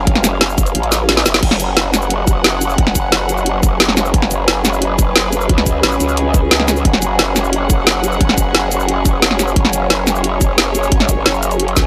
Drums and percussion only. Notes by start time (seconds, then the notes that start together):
0.07 kick, closed hi-hat
0.15 snare, closed hi-hat
0.24 snare, closed hi-hat, cabasa
0.41 snare, closed hi-hat
0.49 cabasa
0.58 kick, closed hi-hat, cabasa
0.66 closed hi-hat, cabasa
0.75 closed hi-hat
0.83 closed hi-hat
0.92 snare, closed hi-hat, cabasa
1.09 snare, closed hi-hat
1.17 snare
1.26 snare, closed hi-hat, cabasa
1.34 snare, closed hi-hat, cabasa
1.43 kick, closed hi-hat, crash
1.51 snare
1.60 closed hi-hat, cabasa
1.77 snare, closed hi-hat
1.94 snare, closed hi-hat, cabasa
2.02 cabasa
2.10 closed hi-hat
2.27 kick, closed hi-hat, cabasa
2.44 snare, closed hi-hat
2.61 closed hi-hat, cabasa
2.70 cabasa
2.78 kick, closed hi-hat
2.87 snare
2.95 kick, closed hi-hat, cabasa
3.12 snare, closed hi-hat
3.29 closed hi-hat, cabasa
3.38 cabasa
3.46 closed hi-hat
3.63 kick, closed hi-hat, cabasa
3.80 snare, closed hi-hat
3.89 snare
3.97 snare, closed hi-hat, cabasa
4.05 cabasa
4.14 kick, closed hi-hat
4.22 snare
4.31 closed hi-hat, cabasa
4.48 snare, closed hi-hat
4.65 snare, closed hi-hat, cabasa
4.73 cabasa
4.82 closed hi-hat
4.99 kick, closed hi-hat, cabasa
5.16 snare, closed hi-hat
5.32 closed hi-hat, cabasa
5.41 cabasa
5.49 kick, closed hi-hat
5.58 snare, closed hi-hat
5.66 kick, closed hi-hat, cabasa
5.83 snare, closed hi-hat
5.92 cabasa
6.00 closed hi-hat, cabasa
6.09 cabasa
6.17 closed hi-hat
6.34 kick, closed hi-hat, cabasa
6.51 snare, closed hi-hat
6.60 snare
6.68 snare, closed hi-hat, cabasa
6.77 cabasa
6.85 kick, closed hi-hat
6.93 snare
7.02 closed hi-hat, cabasa
7.19 snare, closed hi-hat
7.36 snare, closed hi-hat, cabasa
7.44 cabasa
7.53 closed hi-hat
7.70 kick, closed hi-hat, cabasa
7.87 snare, closed hi-hat
8.04 closed hi-hat, cabasa
8.12 cabasa
8.21 kick, closed hi-hat
8.29 snare
8.38 kick, closed hi-hat, cabasa
8.55 snare, closed hi-hat
8.71 closed hi-hat, cabasa
8.80 cabasa
8.88 closed hi-hat
9.05 kick, closed hi-hat, cabasa
9.22 snare, closed hi-hat
9.31 snare
9.39 snare, closed hi-hat, cabasa
9.48 cabasa
9.56 kick, closed hi-hat
9.65 snare
9.73 closed hi-hat, cabasa
9.90 snare, closed hi-hat
10.07 snare, closed hi-hat, cabasa
10.16 cabasa
10.24 closed hi-hat
10.41 kick, closed hi-hat, cabasa
10.58 snare, closed hi-hat
10.75 closed hi-hat, cabasa
10.83 cabasa
10.92 kick, closed hi-hat
11.00 snare, closed hi-hat
11.09 kick, closed hi-hat, cabasa
11.26 snare, closed hi-hat
11.34 cabasa
11.43 closed hi-hat, cabasa
11.51 closed hi-hat, cabasa
11.60 closed hi-hat
11.68 closed hi-hat
11.77 kick, snare, closed hi-hat, cabasa